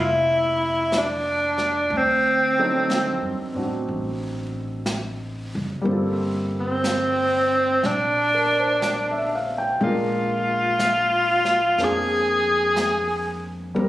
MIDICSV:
0, 0, Header, 1, 5, 480
1, 0, Start_track
1, 0, Tempo, 986842
1, 930, Time_signature, 4, 2, 24, 8
1, 6754, End_track
2, 0, Start_track
2, 0, Title_t, "Grand piano"
2, 0, Program_c, 0, 0
2, 0, Control_c, 0, 64, 127
2, 0, Note_on_c, 0, 53, 46
2, 0, Note_on_c, 0, 58, 41
2, 0, Note_on_c, 0, 60, 43
2, 0, Note_on_c, 0, 62, 42
2, 0, Note_on_c, 0, 69, 51
2, 926, Note_off_c, 0, 53, 0
2, 930, Note_off_c, 0, 58, 0
2, 933, Note_off_c, 0, 60, 0
2, 936, Note_off_c, 0, 62, 0
2, 937, Control_c, 0, 64, 0
2, 940, Note_off_c, 0, 69, 0
2, 1035, Control_c, 0, 64, 127
2, 1256, Note_on_c, 0, 54, 47
2, 1259, Note_on_c, 0, 60, 43
2, 1261, Note_on_c, 0, 62, 40
2, 1262, Note_on_c, 0, 69, 51
2, 1263, Note_on_c, 0, 63, 43
2, 1713, Note_off_c, 0, 60, 0
2, 1720, Note_on_c, 0, 60, 38
2, 1722, Note_off_c, 0, 62, 0
2, 1729, Note_on_c, 0, 62, 33
2, 1736, Note_on_c, 0, 66, 41
2, 2828, Note_on_c, 0, 55, 47
2, 2841, Note_on_c, 0, 58, 43
2, 2846, Note_off_c, 0, 60, 0
2, 2851, Note_off_c, 0, 54, 0
2, 2851, Note_off_c, 0, 62, 0
2, 2853, Note_on_c, 0, 60, 44
2, 2854, Note_off_c, 0, 63, 0
2, 2854, Note_off_c, 0, 69, 0
2, 2855, Note_off_c, 0, 66, 0
2, 2858, Control_c, 0, 64, 0
2, 2869, Note_on_c, 0, 65, 42
2, 2882, Note_on_c, 0, 69, 51
2, 2957, Control_c, 0, 64, 127
2, 4059, Note_on_c, 0, 70, 44
2, 4181, Note_on_c, 0, 72, 41
2, 4203, Note_off_c, 0, 70, 0
2, 4308, Note_on_c, 0, 74, 43
2, 4344, Note_off_c, 0, 72, 0
2, 4431, Note_on_c, 0, 76, 49
2, 4530, Note_off_c, 0, 74, 0
2, 4550, Note_on_c, 0, 77, 46
2, 4631, Note_off_c, 0, 76, 0
2, 4661, Note_on_c, 0, 79, 49
2, 4689, Note_off_c, 0, 77, 0
2, 4760, Note_off_c, 0, 55, 0
2, 4767, Note_off_c, 0, 58, 0
2, 4769, Note_on_c, 0, 56, 44
2, 4773, Note_off_c, 0, 60, 0
2, 4776, Note_on_c, 0, 58, 44
2, 4779, Note_off_c, 0, 65, 0
2, 4779, Control_c, 0, 64, 0
2, 4782, Note_on_c, 0, 62, 44
2, 4787, Note_off_c, 0, 69, 0
2, 4787, Note_on_c, 0, 65, 43
2, 4793, Note_on_c, 0, 70, 52
2, 4824, Note_off_c, 0, 79, 0
2, 4875, Control_c, 0, 64, 127
2, 5725, Note_off_c, 0, 58, 0
2, 5732, Note_on_c, 0, 58, 42
2, 5733, Note_off_c, 0, 62, 0
2, 5733, Note_on_c, 0, 60, 39
2, 5740, Note_on_c, 0, 62, 42
2, 5744, Note_on_c, 0, 68, 49
2, 6680, Note_off_c, 0, 58, 0
2, 6685, Note_on_c, 0, 55, 49
2, 6687, Note_on_c, 0, 58, 45
2, 6688, Note_off_c, 0, 56, 0
2, 6689, Note_off_c, 0, 60, 0
2, 6695, Note_off_c, 0, 62, 0
2, 6696, Note_on_c, 0, 60, 44
2, 6697, Note_off_c, 0, 65, 0
2, 6697, Note_off_c, 0, 68, 0
2, 6697, Control_c, 0, 64, 0
2, 6701, Note_off_c, 0, 70, 0
2, 6709, Note_on_c, 0, 70, 53
2, 6754, Note_off_c, 0, 55, 0
2, 6754, Note_off_c, 0, 58, 0
2, 6754, Note_off_c, 0, 60, 0
2, 6754, Note_off_c, 0, 70, 0
2, 6754, End_track
3, 0, Start_track
3, 0, Title_t, "Tenor saxophone"
3, 0, Program_c, 1, 66
3, 0, Note_on_c, 1, 64, 80
3, 474, Note_on_c, 1, 62, 83
3, 481, Note_off_c, 1, 64, 0
3, 959, Note_on_c, 1, 60, 78
3, 966, Note_off_c, 1, 62, 0
3, 1753, Note_off_c, 1, 60, 0
3, 3210, Note_on_c, 1, 60, 84
3, 3823, Note_on_c, 1, 62, 99
3, 3830, Note_off_c, 1, 60, 0
3, 4626, Note_off_c, 1, 62, 0
3, 4784, Note_on_c, 1, 65, 79
3, 5759, Note_on_c, 1, 68, 93
3, 5766, Note_off_c, 1, 65, 0
3, 6553, Note_off_c, 1, 68, 0
3, 6754, End_track
4, 0, Start_track
4, 0, Title_t, "Upright bass"
4, 0, Program_c, 2, 32
4, 0, Note_on_c, 2, 29, 67
4, 906, Note_off_c, 2, 29, 0
4, 925, Note_on_c, 2, 38, 79
4, 1548, Note_off_c, 2, 38, 0
4, 1564, Note_on_c, 2, 42, 57
4, 1716, Note_off_c, 2, 42, 0
4, 1729, Note_on_c, 2, 45, 51
4, 1879, Note_off_c, 2, 45, 0
4, 1889, Note_on_c, 2, 33, 67
4, 2681, Note_off_c, 2, 33, 0
4, 2699, Note_on_c, 2, 30, 63
4, 2841, Note_off_c, 2, 30, 0
4, 2847, Note_on_c, 2, 31, 72
4, 3790, Note_off_c, 2, 31, 0
4, 3811, Note_on_c, 2, 34, 68
4, 4752, Note_off_c, 2, 34, 0
4, 4770, Note_on_c, 2, 34, 73
4, 5710, Note_off_c, 2, 34, 0
4, 5731, Note_on_c, 2, 41, 68
4, 6671, Note_off_c, 2, 41, 0
4, 6692, Note_on_c, 2, 39, 78
4, 6754, Note_off_c, 2, 39, 0
4, 6754, End_track
5, 0, Start_track
5, 0, Title_t, "Drums"
5, 448, Note_on_c, 9, 25, 33
5, 448, Note_on_c, 9, 38, 44
5, 448, Note_on_c, 9, 44, 45
5, 497, Note_off_c, 9, 38, 0
5, 497, Note_off_c, 9, 44, 0
5, 768, Note_on_c, 9, 38, 23
5, 816, Note_off_c, 9, 38, 0
5, 929, Note_off_c, 9, 25, 0
5, 929, Note_on_c, 9, 25, 37
5, 1410, Note_off_c, 9, 25, 0
5, 1410, Note_on_c, 9, 25, 33
5, 1410, Note_on_c, 9, 38, 45
5, 1410, Note_on_c, 9, 44, 48
5, 1458, Note_off_c, 9, 38, 0
5, 1458, Note_off_c, 9, 44, 0
5, 1884, Note_off_c, 9, 25, 0
5, 1884, Note_on_c, 9, 25, 28
5, 2363, Note_off_c, 9, 25, 0
5, 2363, Note_on_c, 9, 25, 32
5, 2363, Note_on_c, 9, 38, 43
5, 2363, Note_on_c, 9, 44, 49
5, 2412, Note_off_c, 9, 38, 0
5, 2412, Note_off_c, 9, 44, 0
5, 2846, Note_off_c, 9, 25, 0
5, 2846, Note_on_c, 9, 25, 33
5, 3327, Note_off_c, 9, 25, 0
5, 3327, Note_on_c, 9, 25, 39
5, 3327, Note_on_c, 9, 38, 47
5, 3327, Note_on_c, 9, 44, 59
5, 3376, Note_off_c, 9, 38, 0
5, 3376, Note_off_c, 9, 44, 0
5, 3810, Note_off_c, 9, 25, 0
5, 3810, Note_on_c, 9, 25, 34
5, 3810, Note_on_c, 9, 38, 28
5, 3859, Note_off_c, 9, 38, 0
5, 4290, Note_off_c, 9, 25, 0
5, 4290, Note_on_c, 9, 25, 33
5, 4290, Note_on_c, 9, 38, 40
5, 4290, Note_on_c, 9, 44, 48
5, 4339, Note_off_c, 9, 38, 0
5, 4339, Note_off_c, 9, 44, 0
5, 4765, Note_off_c, 9, 25, 0
5, 4765, Note_on_c, 9, 25, 35
5, 5250, Note_off_c, 9, 25, 0
5, 5250, Note_on_c, 9, 25, 30
5, 5250, Note_on_c, 9, 38, 47
5, 5250, Note_on_c, 9, 44, 61
5, 5298, Note_off_c, 9, 38, 0
5, 5298, Note_off_c, 9, 44, 0
5, 5569, Note_on_c, 9, 38, 27
5, 5618, Note_off_c, 9, 38, 0
5, 5731, Note_off_c, 9, 25, 0
5, 5731, Note_on_c, 9, 25, 30
5, 5731, Note_on_c, 9, 38, 29
5, 5780, Note_off_c, 9, 38, 0
5, 6208, Note_off_c, 9, 25, 0
5, 6208, Note_on_c, 9, 25, 39
5, 6208, Note_on_c, 9, 38, 45
5, 6208, Note_on_c, 9, 44, 55
5, 6257, Note_off_c, 9, 38, 0
5, 6257, Note_off_c, 9, 44, 0
5, 6693, Note_off_c, 9, 25, 0
5, 6693, Note_on_c, 9, 25, 35
5, 6754, Note_off_c, 9, 25, 0
5, 6754, End_track
0, 0, End_of_file